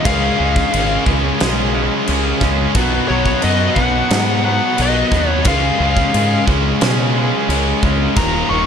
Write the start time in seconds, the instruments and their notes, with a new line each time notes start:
0.03 fingered electric bass C#2, overdriven electric guitar C#3 G#3 C#4, tonewheel organ C#4 G#4 D#5, distorted electric guitar F4 G#4, lead electric guitar F5, kick, crash
0.38 fingered electric bass C#2, overdriven electric guitar C#3 G#3 C#4
0.56 kick
0.73 fingered electric bass G#1, overdriven electric guitar C#3 G#3 C#4, crash
1.05 fingered electric bass C#2, overdriven electric guitar C#3 G#3 C#4, kick
1.39 fingered electric bass B1, overdriven electric guitar C#3 G#3 C#4, snare, crash
1.74 overdriven electric guitar C#3 G#3 C#4
2.07 fingered electric bass C#2, overdriven electric guitar C#3 G#3 C#4, crash
2.41 fingered electric bass C#2, overdriven electric guitar C#3 G#3 C#4, kick, snare
2.75 fingered electric bass B1, overdriven electric guitar B2 F#3 B3, tonewheel organ B3 F#4 C#5, distorted electric guitar D#4 F#4, kick, crash
3.08 fingered electric bass B1, overdriven electric guitar B2 F#3 B3, lead electric guitar C#5
3.26 kick
3.42 fingered electric bass F#2, overdriven electric guitar B2 F#3 B3, lead electric guitar D#5, crash
3.75 fingered electric bass B1, overdriven electric guitar B2 F#3 B3, lead electric guitar F#5, kick
4.10 fingered electric bass G#2, overdriven electric guitar B2 F#3 B3, snare, crash
4.45 overdriven electric guitar B2 F#3 B3, lead electric guitar F#5
4.78 fingered electric bass B1, overdriven electric guitar B2 F#3 B3, lead electric guitar D#5, crash
5.12 fingered electric bass D#2, overdriven electric guitar B2 F#3 B3, kick, snare
5.28 lead electric guitar C#5
5.44 fingered electric bass C#2, overdriven electric guitar C#3 G#3 C#4, tonewheel organ C#4 G#4 D#5, distorted electric guitar F4 G#4, lead electric guitar F5, kick, crash
5.80 fingered electric bass C#2, overdriven electric guitar C#3 G#3 C#4
5.97 kick
6.14 fingered electric bass G#2, overdriven electric guitar C#3 G#3 C#4, crash
6.48 fingered electric bass C#2, overdriven electric guitar C#3 G#3 C#4, kick
6.81 fingered electric bass B2, overdriven electric guitar C#3 G#3 C#4, snare, crash
7.16 overdriven electric guitar C#3 G#3 C#4
7.48 fingered electric bass C#2, overdriven electric guitar C#3 G#3 C#4, crash
7.83 fingered electric bass C#2, overdriven electric guitar C#3 G#3 C#4, kick
8.16 fingered electric bass D#1, overdriven electric guitar D#2 A#2 D#3, distorted electric guitar F#3 A#3 D#4, tonewheel organ A#3 D#4 F5, lead electric guitar A#5, kick, crash
8.50 fingered electric bass D#1, overdriven electric guitar D#2 A#2 D#3, lead electric guitar C#6